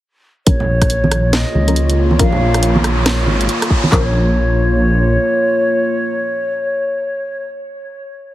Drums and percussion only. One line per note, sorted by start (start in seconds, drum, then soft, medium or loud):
0.47 kick loud
0.47 closed hi-hat medium
0.60 low conga medium
0.82 kick medium
0.82 cross-stick soft
0.82 closed hi-hat soft
0.90 closed hi-hat medium
1.04 high conga medium
1.11 cross-stick medium
1.11 closed hi-hat medium
1.33 snare loud
1.33 closed hi-hat medium
1.55 high conga medium
1.68 closed hi-hat medium
1.76 closed hi-hat medium
1.90 closed hi-hat medium
2.11 high conga medium
2.19 kick loud
2.19 closed hi-hat medium
2.33 low conga medium
2.54 cross-stick soft
2.54 closed hi-hat medium
2.63 closed hi-hat medium
2.76 high conga loud
2.84 cross-stick medium
2.84 closed hi-hat medium
3.06 cross-stick medium
3.06 snare loud
3.06 closed hi-hat medium
3.27 high conga medium
3.41 closed hi-hat medium
3.49 closed hi-hat medium
3.62 cross-stick medium
3.62 closed hi-hat medium
3.71 kick medium
3.84 high conga medium
3.92 kick loud
3.92 clap medium